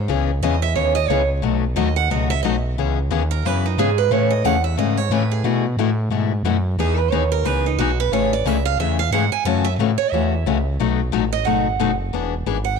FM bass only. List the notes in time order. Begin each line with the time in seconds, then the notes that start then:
0.08 C#2
0.42 E2
0.75 D#2
1.09 C#2
1.42 B1
1.76 D#2
2.10 C#2
2.43 B1
2.78 C#2
3.11 D#2
3.45 F#2
3.78 G#2
4.11 A2
4.44 E2
4.78 G#2
5.10 A2
5.44 B2
5.77 A2
6.10 G#2
6.43 F#2
6.77 E2
7.10 D#2
7.44 C#2
7.77 B1
8.10 A1
8.44 C#2
8.78 E2
9.11 G#2
9.32 G#2
9.45 F#2
9.79 A2
9.98 A2
10.12 E2
10.45 C#2
10.79 B1
11.12 A1
11.45 G#1
11.78 F#1
12.12 E1
12.45 G#1